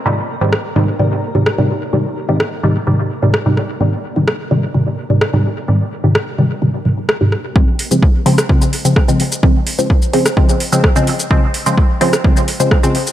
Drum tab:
HH |----------------|----------------|----------------|----------------|
SH |----------------|----------------|----------------|----------------|
SD |----r-------r---|----r-------r-r-|----r-------r---|----r-------r-r-|
BD |----------------|----------------|----------------|----------------|

HH |--o---o---o---o-|--o---o---o---o-|--o---o---o---o-|
SH |---x---x-x-x-x-x|---x-x-x-x-x-x-x|---x---x-x-x-x-x|
SD |-------r----r---|-------r----r---|-------r----r---|
BD |o---o---o---o---|o---o---o---o---|o---o---o---o---|